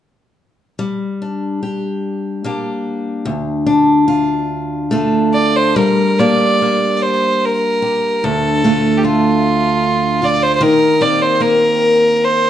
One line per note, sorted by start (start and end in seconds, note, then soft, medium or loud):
0.79 3.25 G3 soft
1.22 2.45 D4 soft
1.63 2.44 G4 soft
2.44 3.34 A#3 soft
2.44 3.66 D4 soft
2.44 3.35 G4 soft
3.25 5.77 D2 medium
3.66 4.91 D4 soft
4.08 4.91 F4 medium
4.91 5.86 A3 soft
4.91 6.20 D4 soft
4.91 5.86 F4 soft
5.34 5.57 D5 medium
5.56 5.78 C5 medium
5.76 8.23 G3 medium
5.76 6.21 A#4 medium
6.19 6.61 A#3 soft
6.19 8.65 D4 soft
6.19 7.81 G4 soft
6.19 6.96 D5 medium
6.62 8.32 A#3 soft
6.96 7.04 D5 soft
7.02 7.46 C5 medium
7.44 8.25 A#4 medium
7.82 8.31 G4 soft
8.24 10.61 D2 medium
8.24 8.99 A4 medium
8.64 9.03 A3 soft
8.64 10.69 D4 soft
8.64 10.21 F4 soft
8.97 9.05 G4 soft
9.03 10.69 A3 soft
9.03 10.25 F4 medium
10.22 10.69 F4 soft
10.22 10.44 D5 medium
10.42 10.55 C5 medium
10.55 10.63 C5 medium
10.61 12.50 D#3 medium
10.61 11.03 A#4 medium
11.01 11.39 A#3 soft
11.01 12.50 C4 soft
11.01 12.50 G4 soft
11.01 11.23 D5 medium
11.21 11.43 C5 medium
11.40 12.50 A#3 soft
11.40 12.26 A#4 medium
12.24 12.50 C5 medium